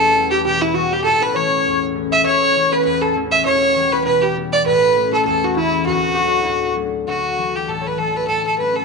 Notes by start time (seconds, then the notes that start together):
Already playing: E1 E2 A3 C#4 A4
0.14 E3 G3 B3
0.31 G4
0.44 B2 G4
0.62 E4
0.74 E3 G3 B3 F#4
0.91 G4
1.04 A1 A2 A4
1.22 B4
1.34 E3 A3 C#4 C#5
1.66 E2
1.94 E3 A3 C#4
2.12 E5
2.24 A1 A2 C#5
2.55 E3 A3 C#4
2.72 B4
2.85 E2 B4
3.02 A4
3.15 E3 A3 C#4
3.32 E5
3.45 E1 E2 C#5
3.75 E3 G3 B3
3.92 B4
4.04 B2 B4
4.22 G4
4.36 E3 G3 B3
4.53 D5
4.66 A1 A2 B4
4.95 E3 A3 C#4
5.13 A4
5.25 E2 A4
5.44 F#4
5.56 E3 A3 C#4 E4
5.86 D1 D2 F#4
6.13 F#4 G4
6.18 F#3 A3 D4
6.43 E4 F#4
6.48 A2
6.76 F#3 A3 D4
7.06 D2 F#4
7.37 E3 F#3 D4
7.55 G4
7.67 A2 A4
7.81 C#5
7.85 B4
7.97 E3 F#3 D4 A4
8.17 B4
8.27 A2 A4
8.45 A4
8.58 F#3 A3 C#4 B4
8.75 A4